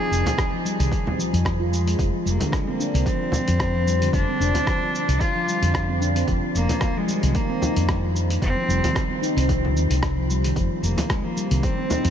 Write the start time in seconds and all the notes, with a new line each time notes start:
Already playing: G#4
0.11 F1, shaker
0.26 closed hi-hat, frame drum, shaker
0.38 kick, cross-stick, closed hi-hat, shaker
0.52 F3
0.65 G3, shaker
0.79 C2 D#3, closed hi-hat, shaker
0.92 kick, closed hi-hat, shaker
1.06 C4, frame drum
1.18 F3, shaker
1.33 F2 F3, closed hi-hat, shaker
1.45 kick, cross-stick, closed hi-hat, shaker
1.60 F4
1.72 G#3, shaker
1.87 G#3, closed hi-hat, shaker
1.99 F1, kick, closed hi-hat, shaker
2.14 F3
2.26 F1 G3 A#3, shaker
2.40 D3, closed hi-hat, frame drum, shaker
2.52 G#3, kick, cross-stick, closed hi-hat, shaker
2.67 A#3 C4
2.80 D4, shaker
2.94 C2 C4, closed hi-hat, shaker
3.06 F3 C4, kick, closed hi-hat, shaker
3.32 frame drum, shaker
3.48 F2, closed hi-hat, shaker
3.60 kick, cross-stick, closed hi-hat, shaker
3.75 F3
3.87 G3, shaker
4.02 D3, closed hi-hat, shaker
4.13 F1 D4, kick, closed hi-hat, shaker
4.28 C4
4.40 F1 D4, shaker
4.54 C4, closed hi-hat, frame drum, shaker
4.67 F3, kick, cross-stick, closed hi-hat, shaker
4.95 shaker
5.08 C2, closed hi-hat, shaker
5.20 F4, kick, closed hi-hat, shaker
5.35 F3
5.47 G3, shaker
5.62 F2 D3, closed hi-hat, shaker
5.74 kick, cross-stick, closed hi-hat, shaker
5.88 C4
6.01 D4, shaker
6.16 C4, closed hi-hat, shaker
6.28 F1 F3, kick, closed hi-hat, shaker
6.55 F1 A#3, shaker
6.69 closed hi-hat, frame drum, shaker
6.81 kick, cross-stick, closed hi-hat, shaker
6.96 F3 G#3
7.08 G3, shaker
7.23 C2 D#3, closed hi-hat, shaker
7.35 A#3, kick, closed hi-hat, shaker
7.49 C4
7.61 D#4, frame drum, shaker
7.76 F2 C4, closed hi-hat, shaker
7.88 F3, kick, cross-stick, closed hi-hat, shaker
8.16 shaker
8.30 closed hi-hat, shaker
8.42 F1 C4, kick, closed hi-hat, shaker
8.57 F3
8.68 F1 G3, shaker
8.83 D#3, closed hi-hat, frame drum, shaker
8.96 kick, cross-stick, closed hi-hat, shaker
9.10 C4
9.22 D#4, shaker
9.37 C2 C4, closed hi-hat, shaker
9.49 F3, kick, closed hi-hat, frame drum, shaker
9.65 frame drum
9.76 D#2, shaker
9.90 C2, closed hi-hat, shaker
10.03 kick, cross-stick, closed hi-hat, shaker
10.17 F3
10.29 G3, shaker
10.44 D#3, closed hi-hat, shaker
10.56 F1 F3, kick, closed hi-hat, shaker
10.83 F1 A#3, shaker
10.98 closed hi-hat, frame drum, shaker
11.10 G#3, kick, cross-stick, closed hi-hat, shaker
11.24 F3 A#3
11.36 G3, shaker
11.51 C2 D#3, closed hi-hat, shaker
11.63 C4, kick, closed hi-hat, shaker
11.78 C4
11.90 D#4, frame drum, shaker
12.04 F2 C4, closed hi-hat, shaker